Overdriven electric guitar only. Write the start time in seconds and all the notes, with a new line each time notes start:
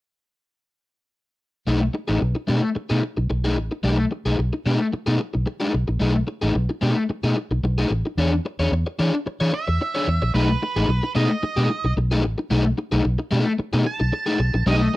1.67 A3 D#4 G#4
1.81 muted overdriven electric guitar stroke
1.94 muted overdriven electric guitar stroke
2.08 A3 D#4 G#4
2.21 muted overdriven electric guitar stroke
2.35 muted overdriven electric guitar stroke
2.47 A3 D#4 G#4
2.62 muted overdriven electric guitar stroke
2.75 muted overdriven electric guitar stroke
2.90 A3 D#4 G#4
3.02 muted overdriven electric guitar stroke
3.17 muted overdriven electric guitar stroke
3.30 muted overdriven electric guitar stroke
3.44 A3 D#4 G#4
3.57 muted overdriven electric guitar stroke
3.71 muted overdriven electric guitar stroke
3.83 A3 D#4 G#4
3.98 muted overdriven electric guitar stroke
4.11 muted overdriven electric guitar stroke
4.26 A3 D#4 G#4
4.39 muted overdriven electric guitar stroke
4.53 muted overdriven electric guitar stroke
4.66 A3 D#4 G#4
4.80 muted overdriven electric guitar stroke
4.93 muted overdriven electric guitar stroke
5.06 A3 D#4 G#4
5.20 muted overdriven electric guitar stroke
5.34 muted overdriven electric guitar stroke
5.46 muted overdriven electric guitar stroke
5.60 A3 D#4 G#4
5.74 muted overdriven electric guitar stroke
5.88 muted overdriven electric guitar stroke
6.00 A3 D#4 G#4
6.15 muted overdriven electric guitar stroke
6.27 muted overdriven electric guitar stroke
6.42 A3 D#4 G#4
6.55 muted overdriven electric guitar stroke
6.69 muted overdriven electric guitar stroke
6.81 A3 D#4 G#4
6.97 muted overdriven electric guitar stroke
7.10 muted overdriven electric guitar stroke
7.24 A3 D#4 G#4
7.37 muted overdriven electric guitar stroke
7.51 muted overdriven electric guitar stroke
7.64 muted overdriven electric guitar stroke
7.78 A3 D#4 G#4
7.91 muted overdriven electric guitar stroke
8.06 muted overdriven electric guitar stroke
8.18 D4 G#4 C#5
8.33 muted overdriven electric guitar stroke
8.45 muted overdriven electric guitar stroke
8.60 D4 G#4 C#5
8.73 muted overdriven electric guitar stroke
8.87 muted overdriven electric guitar stroke
8.99 D4 G#4 C#5
9.14 muted overdriven electric guitar stroke
9.26 muted overdriven electric guitar stroke
9.40 D4 G#4 C#5
9.53 muted overdriven electric guitar stroke
9.68 muted overdriven electric guitar stroke
9.81 muted overdriven electric guitar stroke
9.95 D4 G#4 C#5
10.08 muted overdriven electric guitar stroke
10.22 muted overdriven electric guitar stroke
10.35 A3 D#4 G#4
10.49 muted overdriven electric guitar stroke
10.63 muted overdriven electric guitar stroke
10.76 A3 D#4 G#4
10.89 muted overdriven electric guitar stroke
11.03 muted overdriven electric guitar stroke
11.15 A3 D#4 G#4
11.30 muted overdriven electric guitar stroke
11.43 muted overdriven electric guitar stroke
11.57 A3 D#4 G#4
11.70 muted overdriven electric guitar stroke
11.85 muted overdriven electric guitar stroke
11.97 muted overdriven electric guitar stroke
12.11 A3 D#4 G#4
12.24 muted overdriven electric guitar stroke
12.38 muted overdriven electric guitar stroke
12.51 A3 D#4 G#4
12.65 muted overdriven electric guitar stroke
12.78 muted overdriven electric guitar stroke
12.92 A3 D#4 G#4
13.04 muted overdriven electric guitar stroke
13.19 muted overdriven electric guitar stroke
13.31 A3 D#4 G#4
13.46 muted overdriven electric guitar stroke
13.59 muted overdriven electric guitar stroke
13.73 A3 D#4 G#4
13.85 muted overdriven electric guitar stroke
14.00 muted overdriven electric guitar stroke
14.13 muted overdriven electric guitar stroke
14.26 A3 D#4 G#4
14.39 muted overdriven electric guitar stroke
14.54 muted overdriven electric guitar stroke
14.66 A3 D#4 G#4
14.82 muted overdriven electric guitar stroke